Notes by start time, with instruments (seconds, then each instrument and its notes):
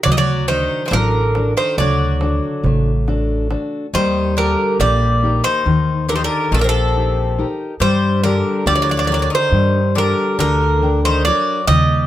0.03 upright bass D2, bouzouki F#3 D5, steel-string acoustic guitar F#3, darbuka dum
0.12 bouzouki G3 D#5
0.17 bouzouki F#3 D5
0.28 darbuka tek
0.48 bouzouki D#3 C5, steel-string acoustic guitar D4 F#4
0.86 bouzouki D#3 C5
0.91 upright bass A1, bouzouki D3 A#4, steel-string acoustic guitar F#3, darbuka tek
1.35 steel-string acoustic guitar D4 F#4 A4, darbuka tek
1.57 bouzouki D#3 C5
1.78 upright bass D2, steel-string acoustic guitar D3, bouzouki F#3 D5, darbuka tek, darbuka dum
2.21 steel-string acoustic guitar D4 F#4 A4, darbuka tek
2.43 darbuka tek
2.63 upright bass A1, steel-string acoustic guitar A3, darbuka dum
2.86 darbuka tek
3.08 steel-string acoustic guitar D4 F#4 A4, darbuka tek
3.50 steel-string acoustic guitar D4 F#4 A4, darbuka tek
3.94 upright bass D#2, bouzouki D#3 C5, steel-string acoustic guitar G3
4.37 bouzouki D3 A#4, steel-string acoustic guitar G4 A#4
4.80 upright bass A#1, bouzouki G3 D5, steel-string acoustic guitar A#3
5.23 steel-string acoustic guitar D#4 G4 A#4
5.44 bouzouki D#3 C5
5.66 upright bass D#2, steel-string acoustic guitar D#3
6.09 bouzouki D3 A#4, steel-string acoustic guitar D#4 G4 A#4
6.16 bouzouki D#3 C5
6.24 bouzouki D3 A#4
6.51 upright bass A#1, bouzouki D#3 A4, steel-string acoustic guitar A#3
6.59 bouzouki D3 A#4
6.64 bouzouki C3
6.69 bouzouki A4
6.95 steel-string acoustic guitar D#4 G4
7.38 steel-string acoustic guitar D#4 G4 A#4
7.80 upright bass G2, bouzouki G3 C5, steel-string acoustic guitar G3
8.24 bouzouki D3 A#4, steel-string acoustic guitar D4 G4 A#4
8.66 upright bass D2, steel-string acoustic guitar D3, bouzouki G3 D5
8.75 bouzouki F#3 D5
8.82 bouzouki F#3 D5
8.89 bouzouki F#3 D5
8.97 bouzouki F#3 D5
9.04 bouzouki F#3 D5
9.10 bouzouki F#3, steel-string acoustic guitar D4 G4 A#4
9.14 bouzouki D5
9.19 bouzouki F#3 D5
9.30 bouzouki D#3
9.35 bouzouki C5
9.52 upright bass G2, steel-string acoustic guitar G3
9.95 bouzouki D3 A#4, steel-string acoustic guitar D4 G4 A#4
10.39 upright bass D2, bouzouki D3 A#4, steel-string acoustic guitar D3
10.82 steel-string acoustic guitar D4 A#4 G5
11.05 bouzouki D#3 C5
11.25 bouzouki F#3 D5, steel-string acoustic guitar D4 A#4
11.68 upright bass D#2, steel-string acoustic guitar D#3, bouzouki G3 D#5, darbuka dum
11.89 darbuka tek